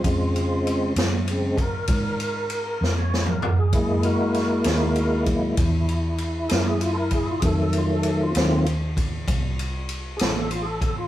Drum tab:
RD |x-x-x-x-x-x-x-x-x-------|x-x-x-x-x-x-x-x-x-x-x-x-|x-x-x-x-x-x-x-x-x-x-x-x-|
SD |------o-----------o-o---|----o-o-----------o-----|------o-----------o-----|
T2 |---------------------o--|------------------------|------------------------|
FT |----------------------o-|------------------------|------------------------|
BD |o---------o-o-----------|o---------o-o---------o-|o---------o-o---------o-|